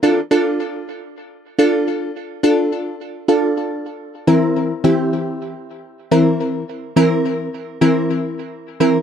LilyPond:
\new Staff \with { instrumentName = "Synth stab" } { \time 4/4 \key f \major \tempo 4 = 106 <d' f' a'>16 r16 <d' f' a'>4~ <d' f' a'>16 r4 <d' f' a'>4 r16 | r16 <d' f' a'>4 r8 <d' f' a'>4 r8. <e c' e' bes'>8~ | <e c' e' bes'>16 r16 <e c' e' g'>4~ <e c' e' g'>16 r4 <e c' e' bes'>4 r16 | r16 <e c' e' bes'>4 r8 <e c' e' bes'>4 r8. <e c' e' bes'>16 r16 | }